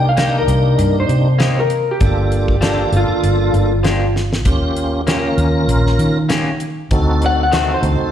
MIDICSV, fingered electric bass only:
0, 0, Header, 1, 3, 480
1, 0, Start_track
1, 0, Key_signature, -2, "minor"
1, 0, Tempo, 612870
1, 1574, Time_signature, 4, 2, 24, 8
1, 6356, End_track
2, 0, Start_track
2, 0, Title_t, "Fingered electric bass"
2, 0, Program_c, 0, 33
2, 0, Note_on_c, 0, 36, 96
2, 304, Note_off_c, 0, 36, 0
2, 374, Note_on_c, 0, 36, 83
2, 590, Note_off_c, 0, 36, 0
2, 613, Note_on_c, 0, 43, 88
2, 830, Note_off_c, 0, 43, 0
2, 852, Note_on_c, 0, 48, 79
2, 1499, Note_off_c, 0, 48, 0
2, 1574, Note_on_c, 0, 31, 88
2, 2220, Note_off_c, 0, 31, 0
2, 2290, Note_on_c, 0, 31, 92
2, 2409, Note_off_c, 0, 31, 0
2, 2532, Note_on_c, 0, 31, 91
2, 2748, Note_off_c, 0, 31, 0
2, 2768, Note_on_c, 0, 31, 92
2, 3491, Note_off_c, 0, 31, 0
2, 3491, Note_on_c, 0, 39, 97
2, 4139, Note_off_c, 0, 39, 0
2, 4211, Note_on_c, 0, 39, 80
2, 4427, Note_off_c, 0, 39, 0
2, 4445, Note_on_c, 0, 34, 87
2, 4664, Note_off_c, 0, 34, 0
2, 4688, Note_on_c, 0, 51, 77
2, 5338, Note_off_c, 0, 51, 0
2, 5411, Note_on_c, 0, 38, 86
2, 6060, Note_off_c, 0, 38, 0
2, 6129, Note_on_c, 0, 38, 96
2, 6249, Note_off_c, 0, 38, 0
2, 6356, End_track
3, 0, Start_track
3, 0, Title_t, "Muted fingered electric bass strokes"
3, 2421, Note_on_c, 9, 29, 34
3, 2499, Note_off_c, 9, 29, 0
3, 6266, Note_on_c, 9, 29, 36
3, 6344, Note_off_c, 9, 29, 0
3, 6356, End_track
0, 0, End_of_file